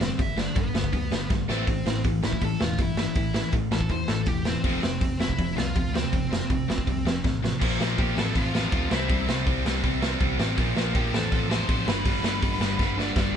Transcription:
0.00 G2 D3 C4 C5, snare
0.19 G1 G2 D3 E4 E5, kick, open hi-hat
0.37 G2 D3 D4 D5, snare
0.55 G1 G2 D3 B3 B4, kick, open hi-hat
0.74 G1 G2 D3, snare
0.84 kick
0.93 D2 G2 D3, kick, open hi-hat
1.11 G1 G2 D3, snare
1.30 G1 G2 D3, kick, snare
1.48 A1 A2 E3 A3 C4 C5, snare
1.67 A1 A2 E3, kick, open hi-hat
1.86 A1 A2 E3, snare
2.04 A1 A2 E3, kick, open hi-hat
2.23 A1 A2 E3 E4 E5, snare
2.33 kick
2.41 A1 A2 E3 A4 A5, kick, open hi-hat
2.60 E1 A2 E3 F4 F5, snare
2.78 G1 A2 E3 E4, kick, open hi-hat
2.82 E5
2.97 A2 E3 E4 E5, snare
3.15 A1 A2 E3, kick, open hi-hat
3.34 A2 E3, snare
3.52 A1 A2 E3, kick, open hi-hat
3.71 A1 A2 E3 A4 A5, snare
3.81 kick
3.89 E2 A2 E3 C5 C6, kick, open hi-hat
4.08 A1 A2 E3 A4 A5, snare
4.26 E1 A2 E3 G4 G5, kick, open hi-hat
4.45 A2 E3 C4 C5, snare
4.64 F1 F2 C3 F3, kick, open hi-hat
4.82 F1 F2 C3, snare
5.01 F1 F2 C3, kick, open hi-hat
5.20 F1 F2 C3 E4 E5, snare
5.29 kick
5.38 F1 F2 C3, kick, open hi-hat
5.57 C2 F2 C3 F4 F5, snare
5.75 D2 F2 C3, kick, open hi-hat
5.94 F2 C3 C4 C5, snare
6.12 F1 F2 C3, kick, open hi-hat
6.31 F2 C3, snare
6.50 F1 F2 C3, kick, open hi-hat
6.68 F1 F2 C3, snare
6.78 kick
6.87 C2 F2 C3, kick, open hi-hat
7.05 F1 F2 C3, snare
7.24 A1 F2 C3, kick, snare
7.43 F2 C3, snare
7.61 A#1 A#2 F3 A#3, kick, crash
7.80 A#1 A#2 F3 A#3, snare
7.98 A#1 A#2 F3 A#3 G4 G5, kick, open hi-hat
8.16 A1 F2 C3 F3 A4 A5, snare
8.35 A1 F2 C3 F3 F4 F5, kick, open hi-hat
8.54 F2 C3 F3, snare
8.72 D2 F2 C3 F3, kick, open hi-hat
8.90 C2 C3 G3 C4 E4 E5, snare
9.09 C2 C3 G3 C4, kick, open hi-hat
9.28 C2 C3 G3 C4, snare
9.46 C2 C3 G3 C4, kick, open hi-hat
9.64 C2 C3 G3 C4, snare
9.83 C2 C3 G3 C4, kick, open hi-hat
10.01 C3 G3 C4, snare
10.20 C2 C3 G3 C4, kick, open hi-hat
10.38 A1 C3 G3 C4, snare
10.57 A#1 A#2 F3 A#3, kick, open hi-hat
10.75 A#1 A#2 F3 A#3, snare
10.93 A#1 A#2 F3 A#3 G4 G5, kick, open hi-hat
11.12 A1 F2 C3 F3 A4 A5, snare
11.30 A1 F2 C3 F3, kick, open hi-hat
11.49 F2 C3 F3 C5 C6, snare
11.68 A1 F2 C3 F3, kick, open hi-hat
11.86 G1 G2 D3 G3 B4 B5, snare
12.04 G1 G2 D3 G3, kick, open hi-hat
12.23 G1 G2 D3 G3, snare
12.41 G1 G2 D3 G3, kick, open hi-hat
12.59 G1 G2 D3 G3, snare
12.78 G1 G2 D3 G3, kick, snare
12.97 G2 D3 G3 D4 D5, snare
13.15 G1 G2 D3 G3 D4 D5, kick, snare

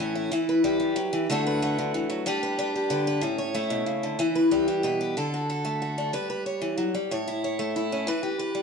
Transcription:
Already playing: A2 A3 C#4 E4
0.00 E3 C#5
0.15 E4
0.32 E3 E4
0.49 B4
0.64 G3 G4
0.80 G3
0.96 F#3
1.13 E3
1.30 D3 A3 D4 F#4 A4
1.47 B4
1.62 A3 F#4
1.78 D3
1.94 E3
2.10 F#3
2.26 G3 D4 G4 B4
2.43 B4
2.59 D4 B4
2.76 G4
2.90 D3 B4
3.07 B4
3.21 A2 C#4
3.38 C#5
3.54 A3 E4
3.70 B2
3.86 C#3
4.03 D3
4.19 E3 E4
4.35 B4
4.51 G3 G4
4.68 E4
4.83 B2 B4
5.01 G4
5.17 D3 A4
5.34 F#4
5.50 A4
5.65 A3
5.82 F#4
5.98 D4
6.13 G3 B4
6.30 B4
6.46 C#5
6.62 E3
6.78 F#3
6.95 G3
7.11 A2 C#5
7.28 E4
7.44 C#5
7.59 A3
7.76 E4
7.92 C#4
8.07 E3 B4
8.23 G4
8.39 B4
8.55 G3

